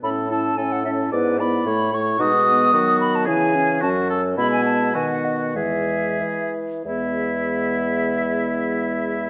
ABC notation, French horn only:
X:1
M:2/4
L:1/8
Q:1/4=108
K:E
V:1 name="French horn" clef=bass
C C C C | B, B, A, A, | G,2 F,2 | E,2 F,2 |
G,2 D,2 | E,3 z | G,4- | G,4 |]